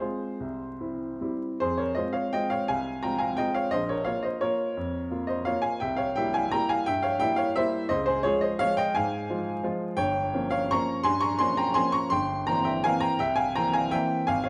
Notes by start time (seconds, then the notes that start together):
0.00 G#3 C4 F4 G#4 C5
0.40 C2
0.81 C4 E4
1.21 G3 C4 E4
1.60 F2 G#4 C5
1.78 A#4 C#5
1.95 G#3 C4 F4 C5 D#5
2.13 C#5 F5
2.33 G#3 C4 F4 D#5 G5
2.50 C#5 F5
2.68 C2 F5 G#5
3.03 G#3 C4 F4 G5 A#5
3.19 F5 G#5
3.37 G#3 C4 F4 D#5 G5
3.54 C#5 F5
3.71 A#1 C5 D#5
3.89 A#4 C#5
4.04 A#3 F4 C#5 F5
4.23 C5 D#5
4.41 A#3 F4 A#4 C#5
4.77 F2
5.11 A#3 F4
5.27 C5 D#5
5.45 A#3 F4 C#5 F5
5.62 F5 G#5
5.80 C2 E5 G5
5.96 C#5 F5
6.16 G3 A#3 E4 E5 G5
6.34 F5 G#5
6.52 G3 A#3 E4 G5 A#5
6.69 F5 G#5
6.86 G2 E5 G5
7.03 C#5 F5
7.20 G3 A#3 E4 E5 G5
7.36 C#5 F5
7.56 G3 A#3 E4 C5 E5
7.89 C#2 C5 D#5
8.06 G#4 C5
8.23 F3 G#3 F4 G#4 C#5
8.41 C5 D#5
8.59 F3 G#3 F4 C#5 F5
8.77 D#5 G5
8.95 G#2 F5 G#5
9.29 F3 G#3 F4
9.63 F3 G#3 F4
9.97 G1 C#5 G5
10.34 F3 A#3 C#4
10.51 C#5 F5
10.71 F3 A#3 C#4 A#5 C#6
11.03 G2 G#5 C6
11.20 A#5 C#6
11.38 F3 A#3 C#4 G#5 C6
11.57 G5 A#5
11.74 F3 A#3 C#4 G#5 C6
11.92 A#5 C#6
12.10 G1 G5 C6
12.47 E3 A#3 C4 G5 A#5
12.64 E5 G5
12.84 E3 A#3 C4 F5 G#5
13.00 G5 A#5
13.19 C2 E5 G5
13.36 F5 G#5
13.55 E3 A#3 C4 G5 A#5
13.73 F5 G#5
13.91 E3 A#3 C4 E5 G5
14.27 G#1 F5 G#5
14.44 C#5 F5